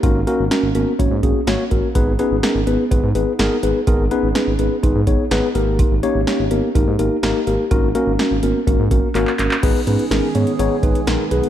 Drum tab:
CC |----------------|----------------|----------------|----------------|
HH |x-x-x-x-x-x-x-x-|x-x-x-x-x-x-x-x-|x-x-x-x-x-x-x-x-|x-x-x-x-x-x-x-x-|
CP |----------------|----------------|----------------|----------------|
SD |----o-------o---|----o-------o---|----o-------o---|----o-------o---|
BD |o-------o-o---o-|o-------o-------|o-------o-o-----|o-------o-------|

CC |----------------|x---------------|
HH |x-x-x-x-x-x-x-x-|x-xxx-xxx-xxx-xx|
CP |------------xxxx|----------------|
SD |----o-----------|----o-------o---|
BD |o-------o-o-----|o---------o-----|